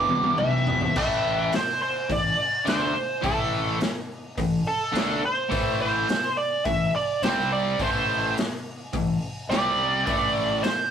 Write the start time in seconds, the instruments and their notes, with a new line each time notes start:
Already playing: distorted electric guitar E2 B2 E3, lead electric guitar D6
0.09 fingered electric bass C2, high tom
0.24 high tom
0.38 fingered electric bass B1, lead electric guitar E5, mid tom
0.67 fingered electric bass G#1, floor tom
0.81 floor tom
0.96 fingered electric bass A1, distorted electric guitar A2 E3 A3, lead electric guitar E5, kick, crash
1.52 lead electric guitar C5, snare, open hi-hat
1.82 lead electric guitar C5
2.09 fingered electric bass A1, distorted electric guitar A2 E3, lead electric guitar D5, kick, open hi-hat
2.65 fingered electric bass D2, distorted electric guitar D3 A3 D4, lead electric guitar C5, snare, open hi-hat
2.94 muted distorted electric guitar stroke, muted fingered electric bass stroke
3.22 fingered electric bass A1, distorted electric guitar A2 E3 A3, lead electric guitar A4, kick, open hi-hat
3.80 snare, open hi-hat
4.38 fingered electric bass A1, distorted electric guitar A2 E3, kick, open hi-hat
4.67 lead electric guitar A4
4.92 fingered electric bass D2, distorted electric guitar D3 A3 D4, open hi-hat
4.97 snare
5.22 lead electric guitar C5, muted distorted electric guitar stroke, muted fingered electric bass stroke
5.49 fingered electric bass A1, distorted electric guitar A2 E3 A3, kick, open hi-hat
5.81 lead electric guitar C5
6.09 snare, open hi-hat
6.37 lead electric guitar D5
6.65 fingered electric bass A1, distorted electric guitar A2 E3, lead electric guitar E5, kick, open hi-hat
6.96 lead electric guitar D5
7.22 fingered electric bass C2, distorted electric guitar C3 G3 C4, lead electric guitar C5, snare, open hi-hat
7.52 lead electric guitar D5
7.79 fingered electric bass A1, distorted electric guitar A2 E3 A3, lead electric guitar C5, kick, open hi-hat
8.37 snare, open hi-hat
8.93 fingered electric bass A1, distorted electric guitar A2 E3, kick, open hi-hat
9.49 fingered electric bass C2, distorted electric guitar C3 G3 C4, lead electric guitar D5, snare, open hi-hat
10.06 fingered electric bass A1, distorted electric guitar A2 E3 A3, lead electric guitar D5, kick, open hi-hat
10.63 lead electric guitar C5, snare, open hi-hat